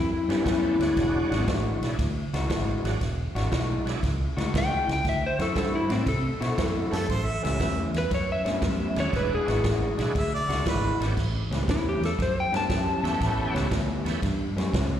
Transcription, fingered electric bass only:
0, 0, Header, 1, 2, 480
1, 0, Start_track
1, 0, Tempo, 509771
1, 911, Time_signature, 4, 2, 24, 8
1, 14123, End_track
2, 0, Start_track
2, 0, Title_t, "Fingered electric bass"
2, 0, Program_c, 0, 33
2, 0, Note_on_c, 0, 42, 96
2, 180, Note_off_c, 0, 42, 0
2, 267, Note_on_c, 0, 43, 77
2, 378, Note_off_c, 0, 43, 0
2, 430, Note_on_c, 0, 42, 76
2, 658, Note_off_c, 0, 42, 0
2, 745, Note_on_c, 0, 38, 80
2, 857, Note_off_c, 0, 38, 0
2, 913, Note_on_c, 0, 28, 82
2, 1139, Note_off_c, 0, 28, 0
2, 1235, Note_on_c, 0, 32, 80
2, 1343, Note_off_c, 0, 32, 0
2, 1394, Note_on_c, 0, 33, 77
2, 1621, Note_off_c, 0, 33, 0
2, 1706, Note_on_c, 0, 35, 77
2, 1817, Note_off_c, 0, 35, 0
2, 1872, Note_on_c, 0, 38, 89
2, 2099, Note_off_c, 0, 38, 0
2, 2197, Note_on_c, 0, 37, 77
2, 2304, Note_off_c, 0, 37, 0
2, 2355, Note_on_c, 0, 32, 65
2, 2581, Note_off_c, 0, 32, 0
2, 2673, Note_on_c, 0, 32, 79
2, 2781, Note_off_c, 0, 32, 0
2, 2834, Note_on_c, 0, 28, 90
2, 3060, Note_off_c, 0, 28, 0
2, 3153, Note_on_c, 0, 32, 82
2, 3262, Note_off_c, 0, 32, 0
2, 3311, Note_on_c, 0, 35, 88
2, 3538, Note_off_c, 0, 35, 0
2, 3629, Note_on_c, 0, 35, 65
2, 3739, Note_off_c, 0, 35, 0
2, 3792, Note_on_c, 0, 37, 79
2, 4019, Note_off_c, 0, 37, 0
2, 4115, Note_on_c, 0, 38, 80
2, 4223, Note_off_c, 0, 38, 0
2, 4279, Note_on_c, 0, 37, 77
2, 4503, Note_off_c, 0, 37, 0
2, 4596, Note_on_c, 0, 37, 80
2, 4704, Note_off_c, 0, 37, 0
2, 4755, Note_on_c, 0, 38, 89
2, 4981, Note_off_c, 0, 38, 0
2, 5074, Note_on_c, 0, 42, 83
2, 5182, Note_off_c, 0, 42, 0
2, 5232, Note_on_c, 0, 43, 93
2, 5459, Note_off_c, 0, 43, 0
2, 5552, Note_on_c, 0, 45, 69
2, 5661, Note_off_c, 0, 45, 0
2, 5708, Note_on_c, 0, 48, 87
2, 5937, Note_off_c, 0, 48, 0
2, 6034, Note_on_c, 0, 47, 73
2, 6143, Note_off_c, 0, 47, 0
2, 6199, Note_on_c, 0, 42, 67
2, 6424, Note_off_c, 0, 42, 0
2, 6521, Note_on_c, 0, 42, 85
2, 6628, Note_off_c, 0, 42, 0
2, 6677, Note_on_c, 0, 33, 86
2, 6903, Note_off_c, 0, 33, 0
2, 7012, Note_on_c, 0, 37, 80
2, 7115, Note_off_c, 0, 37, 0
2, 7156, Note_on_c, 0, 40, 89
2, 7382, Note_off_c, 0, 40, 0
2, 7481, Note_on_c, 0, 40, 65
2, 7588, Note_off_c, 0, 40, 0
2, 7640, Note_on_c, 0, 42, 81
2, 7865, Note_off_c, 0, 42, 0
2, 7960, Note_on_c, 0, 43, 77
2, 8067, Note_off_c, 0, 43, 0
2, 8118, Note_on_c, 0, 42, 75
2, 8344, Note_off_c, 0, 42, 0
2, 8445, Note_on_c, 0, 39, 82
2, 8551, Note_off_c, 0, 39, 0
2, 8594, Note_on_c, 0, 28, 90
2, 8822, Note_off_c, 0, 28, 0
2, 8924, Note_on_c, 0, 32, 86
2, 9031, Note_off_c, 0, 32, 0
2, 9078, Note_on_c, 0, 33, 89
2, 9305, Note_off_c, 0, 33, 0
2, 9402, Note_on_c, 0, 35, 76
2, 9509, Note_off_c, 0, 35, 0
2, 9557, Note_on_c, 0, 38, 87
2, 9784, Note_off_c, 0, 38, 0
2, 9876, Note_on_c, 0, 37, 84
2, 9985, Note_off_c, 0, 37, 0
2, 10040, Note_on_c, 0, 32, 66
2, 10266, Note_off_c, 0, 32, 0
2, 10361, Note_on_c, 0, 32, 80
2, 10469, Note_off_c, 0, 32, 0
2, 10520, Note_on_c, 0, 33, 90
2, 10746, Note_off_c, 0, 33, 0
2, 10834, Note_on_c, 0, 37, 80
2, 10944, Note_off_c, 0, 37, 0
2, 10998, Note_on_c, 0, 40, 92
2, 11225, Note_off_c, 0, 40, 0
2, 11311, Note_on_c, 0, 40, 76
2, 11422, Note_off_c, 0, 40, 0
2, 11479, Note_on_c, 0, 42, 81
2, 11705, Note_off_c, 0, 42, 0
2, 11790, Note_on_c, 0, 43, 79
2, 11902, Note_off_c, 0, 43, 0
2, 11952, Note_on_c, 0, 42, 73
2, 12181, Note_off_c, 0, 42, 0
2, 12272, Note_on_c, 0, 40, 85
2, 12383, Note_off_c, 0, 40, 0
2, 12435, Note_on_c, 0, 33, 90
2, 12663, Note_off_c, 0, 33, 0
2, 12755, Note_on_c, 0, 37, 82
2, 12865, Note_off_c, 0, 37, 0
2, 12914, Note_on_c, 0, 38, 91
2, 13141, Note_off_c, 0, 38, 0
2, 13231, Note_on_c, 0, 40, 73
2, 13341, Note_off_c, 0, 40, 0
2, 13398, Note_on_c, 0, 43, 86
2, 13624, Note_off_c, 0, 43, 0
2, 13711, Note_on_c, 0, 42, 74
2, 13821, Note_off_c, 0, 42, 0
2, 13875, Note_on_c, 0, 37, 78
2, 14101, Note_off_c, 0, 37, 0
2, 14123, End_track
0, 0, End_of_file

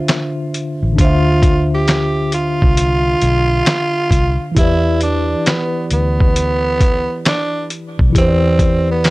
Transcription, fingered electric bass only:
0, 0, Header, 1, 2, 480
1, 0, Start_track
1, 0, Tempo, 895522
1, 525, Time_signature, 4, 2, 24, 8
1, 4879, End_track
2, 0, Start_track
2, 0, Title_t, "Fingered electric bass"
2, 0, Program_c, 0, 33
2, 443, Note_on_c, 0, 33, 95
2, 513, Note_off_c, 0, 33, 0
2, 529, Note_on_c, 0, 38, 102
2, 1384, Note_off_c, 0, 38, 0
2, 1406, Note_on_c, 0, 36, 75
2, 1681, Note_off_c, 0, 36, 0
2, 1727, Note_on_c, 0, 35, 78
2, 1933, Note_off_c, 0, 35, 0
2, 2202, Note_on_c, 0, 36, 78
2, 2340, Note_off_c, 0, 36, 0
2, 2449, Note_on_c, 0, 40, 95
2, 2859, Note_off_c, 0, 40, 0
2, 3170, Note_on_c, 0, 38, 85
2, 3784, Note_off_c, 0, 38, 0
2, 4286, Note_on_c, 0, 35, 99
2, 4355, Note_off_c, 0, 35, 0
2, 4371, Note_on_c, 0, 40, 105
2, 4879, Note_off_c, 0, 40, 0
2, 4879, End_track
0, 0, End_of_file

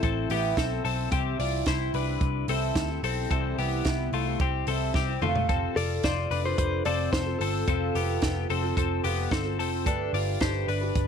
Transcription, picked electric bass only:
0, 0, Header, 1, 2, 480
1, 0, Start_track
1, 0, Tempo, 546448
1, 985, Time_signature, 4, 2, 24, 8
1, 9727, End_track
2, 0, Start_track
2, 0, Title_t, "Picked electric bass"
2, 0, Program_c, 0, 34
2, 24, Note_on_c, 0, 33, 86
2, 221, Note_off_c, 0, 33, 0
2, 260, Note_on_c, 0, 33, 99
2, 459, Note_off_c, 0, 33, 0
2, 501, Note_on_c, 0, 35, 83
2, 699, Note_off_c, 0, 35, 0
2, 742, Note_on_c, 0, 35, 81
2, 940, Note_off_c, 0, 35, 0
2, 980, Note_on_c, 0, 36, 89
2, 1179, Note_off_c, 0, 36, 0
2, 1223, Note_on_c, 0, 36, 86
2, 1421, Note_off_c, 0, 36, 0
2, 1462, Note_on_c, 0, 36, 98
2, 1660, Note_off_c, 0, 36, 0
2, 1702, Note_on_c, 0, 36, 102
2, 1900, Note_off_c, 0, 36, 0
2, 1941, Note_on_c, 0, 36, 94
2, 2139, Note_off_c, 0, 36, 0
2, 2179, Note_on_c, 0, 36, 97
2, 2378, Note_off_c, 0, 36, 0
2, 2416, Note_on_c, 0, 38, 75
2, 2616, Note_off_c, 0, 38, 0
2, 2659, Note_on_c, 0, 35, 83
2, 2858, Note_off_c, 0, 35, 0
2, 2903, Note_on_c, 0, 36, 90
2, 3100, Note_off_c, 0, 36, 0
2, 3144, Note_on_c, 0, 36, 83
2, 3341, Note_off_c, 0, 36, 0
2, 3385, Note_on_c, 0, 36, 94
2, 3581, Note_off_c, 0, 36, 0
2, 3621, Note_on_c, 0, 36, 87
2, 3819, Note_off_c, 0, 36, 0
2, 3863, Note_on_c, 0, 36, 91
2, 4060, Note_off_c, 0, 36, 0
2, 4102, Note_on_c, 0, 36, 91
2, 4300, Note_off_c, 0, 36, 0
2, 4338, Note_on_c, 0, 36, 77
2, 4538, Note_off_c, 0, 36, 0
2, 4581, Note_on_c, 0, 29, 91
2, 4976, Note_off_c, 0, 29, 0
2, 5060, Note_on_c, 0, 29, 81
2, 5259, Note_off_c, 0, 29, 0
2, 5302, Note_on_c, 0, 29, 89
2, 5500, Note_off_c, 0, 29, 0
2, 5538, Note_on_c, 0, 29, 88
2, 5738, Note_off_c, 0, 29, 0
2, 5780, Note_on_c, 0, 29, 84
2, 5979, Note_off_c, 0, 29, 0
2, 6022, Note_on_c, 0, 29, 92
2, 6220, Note_off_c, 0, 29, 0
2, 6259, Note_on_c, 0, 29, 77
2, 6458, Note_off_c, 0, 29, 0
2, 6502, Note_on_c, 0, 31, 86
2, 6700, Note_off_c, 0, 31, 0
2, 6742, Note_on_c, 0, 29, 95
2, 6940, Note_off_c, 0, 29, 0
2, 6982, Note_on_c, 0, 29, 89
2, 7180, Note_off_c, 0, 29, 0
2, 7222, Note_on_c, 0, 29, 93
2, 7420, Note_off_c, 0, 29, 0
2, 7463, Note_on_c, 0, 29, 91
2, 7660, Note_off_c, 0, 29, 0
2, 7702, Note_on_c, 0, 29, 96
2, 7900, Note_off_c, 0, 29, 0
2, 7943, Note_on_c, 0, 29, 96
2, 8140, Note_off_c, 0, 29, 0
2, 8178, Note_on_c, 0, 31, 76
2, 8423, Note_off_c, 0, 31, 0
2, 8423, Note_on_c, 0, 29, 87
2, 8662, Note_off_c, 0, 29, 0
2, 8662, Note_on_c, 0, 31, 94
2, 8860, Note_off_c, 0, 31, 0
2, 8898, Note_on_c, 0, 31, 88
2, 9097, Note_off_c, 0, 31, 0
2, 9143, Note_on_c, 0, 31, 97
2, 9340, Note_off_c, 0, 31, 0
2, 9379, Note_on_c, 0, 31, 88
2, 9577, Note_off_c, 0, 31, 0
2, 9621, Note_on_c, 0, 31, 96
2, 9727, Note_off_c, 0, 31, 0
2, 9727, End_track
0, 0, End_of_file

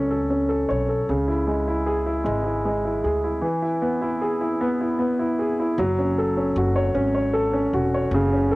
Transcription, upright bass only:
0, 0, Header, 1, 2, 480
1, 0, Start_track
1, 0, Tempo, 780234
1, 672, Time_signature, 6, 3, 24, 8
1, 5264, End_track
2, 0, Start_track
2, 0, Title_t, "Upright bass"
2, 0, Program_c, 0, 32
2, 0, Note_on_c, 0, 37, 76
2, 409, Note_off_c, 0, 37, 0
2, 433, Note_on_c, 0, 35, 78
2, 659, Note_off_c, 0, 35, 0
2, 670, Note_on_c, 0, 37, 88
2, 1367, Note_off_c, 0, 37, 0
2, 1389, Note_on_c, 0, 32, 91
2, 1847, Note_off_c, 0, 32, 0
2, 1871, Note_on_c, 0, 38, 67
2, 2098, Note_off_c, 0, 38, 0
2, 3554, Note_on_c, 0, 30, 91
2, 4009, Note_off_c, 0, 30, 0
2, 4034, Note_on_c, 0, 30, 96
2, 4259, Note_off_c, 0, 30, 0
2, 4272, Note_on_c, 0, 32, 85
2, 4727, Note_off_c, 0, 32, 0
2, 4757, Note_on_c, 0, 28, 81
2, 4980, Note_off_c, 0, 28, 0
2, 4991, Note_on_c, 0, 30, 103
2, 5264, Note_off_c, 0, 30, 0
2, 5264, End_track
0, 0, End_of_file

